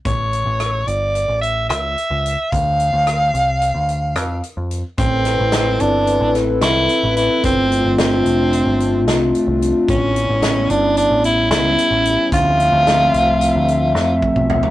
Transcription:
<<
  \new Staff \with { instrumentName = "Soprano saxophone" } { \time 9/8 \key a \minor \tempo 4. = 74 cis''4. d''4 e''8 e''4. | f''2.~ f''8 r4 | c'4. d'4 r8 e'4 e'8 | c'4 c'2 r4. |
cis'4. d'8 d'8 e'8 e'4. | f'2.~ f'8 r4 | }
  \new Staff \with { instrumentName = "Analog synth pad" } { \time 9/8 \key a \minor r1 r8 | r1 r8 | <c' e' a' b'>1~ <c' e' a' b'>8 | <a c' d' f'>1~ <a c' d' f'>8 |
<g b cis' e'>1~ <g b cis' e'>8 | <f a c' e''>1~ <f a c' e''>8 | }
  \new Staff \with { instrumentName = "Picked electric bass" } { \clef bass \time 9/8 \key a \minor a,,8. a,,8. g,,8. a,,8. cis,8 r16 cis,8 r16 | d,8. d,8. c,8. d,8. f,8 r16 f,8 r16 | a,,8. a,,8. g,,8. a,,8. c,8 r16 a,,8 r16 | g,,8. g,,8. f,,8. g,,8. c,8 r16 c,8 r16 |
a,,8. a,,8. g,,8. a,,8. cis,8 r16 a,,8 r16 | d,8. d,8. c,8. d,8. f,8 r16 b,,8 r16 | }
  \new DrumStaff \with { instrumentName = "Drums" } \drummode { \time 9/8 <hh bd>8 hh8 <hh ss>8 hh8 hh8 hh8 <hh ss>8 hh8 hh8 | <hh bd>8 hh8 <hh ss>8 hh8 hh8 hh8 <hh ss>8 hh8 hh8 | <hh bd>8 <hh sn>8 <hh sn>8 hh8 hh8 <hh sn>8 <hh sn>8 hh8 hh8 | <hh bd>8 hh8 <hh sn>8 hh8 hh8 hh8 <hh sn>8 hh8 hh8 |
<hh bd>8 hh8 <hh sn>8 hh8 hh8 hh8 <hh sn>8 hh8 hh8 | <hh bd>8 hh8 <hh sn>8 hh8 hh8 hh8 sn8 bd16 bd16 tomfh16 tomfh16 | }
>>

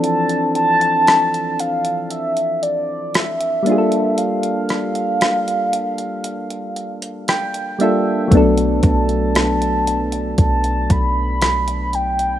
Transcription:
<<
  \new Staff \with { instrumentName = "Soft synth lead" } { \time 4/4 \key b \phrygian \tempo 4 = 58 a''8 a''4 f''8 e''8 d''8 e''4 | f''2.~ f''8 r8 | r8 a''4. a''8 b''4 g''8 | }
  \new Staff \with { instrumentName = "Synth keys" } { \time 4/4 \key b \phrygian << { r1 | r2. g''8 e''8 | r1 | } \\ { <e f c' d' a'>2.~ <e f c' d' a'>8 <g bes d' f' gis' a'>8~ | <g bes d' f' gis' a'>2.~ <g bes d' f' gis' a'>8 <g bes d' f' a'>8 | <fis a b d' a'>1 | } >> }
  \new Staff \with { instrumentName = "808-style bass" } { \clef bass \time 4/4 \key b \phrygian r1 | r1 | b,,8 b,,4. b,,8 b,,4. | }
  \new DrumStaff \with { instrumentName = "Drums" } \drummode { \time 4/4 hh16 hh16 hh16 hh16 <hh ss>16 hh16 hh16 hh16 hh16 hh16 hh8 <hh ss>16 hh16 hh16 hh16 | hh16 hh16 <hh ss>16 hh16 <hh ss>16 hh16 hh16 hh16 hh16 hh16 hh16 hh16 <hh ss>16 hh16 hh8 | <hh bd>16 hh16 <hh bd>16 hh16 <hh ss>16 hh16 hh16 hh16 <hh bd>16 hh16 <hh bd>8 <hh ss>16 hh16 hh16 hh16 | }
>>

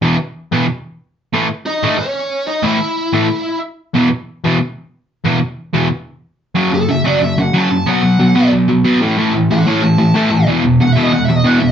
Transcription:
<<
  \new Staff \with { instrumentName = "Lead electric guitar" } { \time 4/4 \key e \lydian \tempo 4 = 184 r1 | r4 <dis' dis''>4 <cis' cis''>4. <dis' dis''>8 | <e' e''>2. r4 | r1 |
r1 | r8 a'8 e''8 d''8 e''8 fis''8 a''4 | fis''2 r2 | r4 <a' fis''>8 <cis'' a''>8 a''2 |
r4 \tuplet 3/2 { fis''8 e''8 dis''8 fis''8 e''8 dis''8 fis''8 e''8 dis''8 } | }
  \new Staff \with { instrumentName = "Overdriven electric guitar" } { \clef bass \time 4/4 \key e \lydian <e, b, e>8 r4 <e, b, e>8 r2 | <a, e a>8 r4 <a, e a>8 r2 | <a, e a>8 r4 <a, e a>8 r2 | <e, b, e>8 r4 <e, b, e>8 r2 |
<e, b, e>8 r4 <e, b, e>8 r2 | <fis, cis fis>8 <fis, cis>8 <fis, cis>8 <fis, cis fis>8 <fis, cis>8 <fis, cis>8 <fis, cis fis>8 <fis, cis>8 | <b, fis b>8 <b, fis>8 <b, fis>8 <b, fis b>8 <b, fis>8 <b, fis>8 <b, fis b>8 <a, e a>8 | <a, e a>8 <a, e>8 <a, e>8 <a, e a>8 <a, e>8 <a, e>8 <a, e a>8 <a, e>8 |
<e, b, e>8 <e, b,>8 <e, b,>8 <e, b, e>8 <e, b,>8 <e, b,>8 <e, b, e>8 <e, b,>8 | }
>>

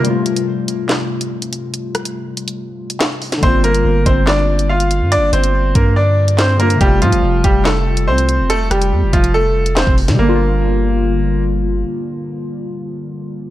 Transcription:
<<
  \new Staff \with { instrumentName = "Grand piano" } { \time 4/4 \key g \minor \tempo 4 = 142 r1 | r1 | <c' c''>8 <bes bes'>4 <c' c''>8 <d' d''>4 <f' f''>4 | <d' d''>8 <c' c''>4 <bes bes'>8 <d' d''>4 <c' c''>8 <bes bes'>8 |
<g g'>8 <f f'>4 <g g'>8 <a a'>4 <c' c''>4 | <a a'>8 <g g'>4 <f f'>8 <a a'>4 <c' c''>8 r8 | bes2. r4 | r1 | }
  \new Staff \with { instrumentName = "Synth keys" } { \clef bass \time 4/4 \key g \minor <c g a f'>1~ | <c g a f'>1 | <d g bes f'>1~ | <d g bes f'>2.~ <d g bes f'>8 <d g bes f'>8 |
<c g a f'>1~ | <c g a f'>1 | <d g bes f'>1~ | <d g bes f'>1 | }
  \new Staff \with { instrumentName = "808-style bass" } { \clef bass \time 4/4 \key g \minor r1 | r1 | g,,4 g,,8 g,,2~ g,,16 g,16~ | g,32 g,,16. g,,4 g,2~ g,8 |
f,,8 a,16 f,,16 f,,8 f,,4. c,8. f,,16~ | f,,8 f,,8 f,16 f,,16 f,,4.~ f,,16 f,,8 c16 | g,,1 | r1 | }
  \new DrumStaff \with { instrumentName = "Drums" } \drummode { \time 4/4 hh8 hh16 hh16 r8 hh8 <hc sn>8. hh16 r16 hh16 hh8 | hh8 <hh ss>16 hh16 r8 hh16 hh16 r8. hh16 <hc hh sn>8 hho16 <hh sn>16 | <hh bd>8 hh16 hh16 r8 <hh bd>8 <hc sn>8. hh16 r16 hh16 hh8 | hh8 hh16 hh16 r8 <hh bd>8 r8. hh16 <hc hh sn>8 hh16 hh16 |
<hh bd>8 hh16 hh16 r8 <hh bd>8 <hc sn>8. hh16 r16 hh16 hh8 | hh8 <hh ss>16 hh16 r8 <hh bd>16 hh16 r8. hh16 <hc hh sn>16 bd16 hho16 <hh sn>16 | r4 r4 r4 r4 | r4 r4 r4 r4 | }
>>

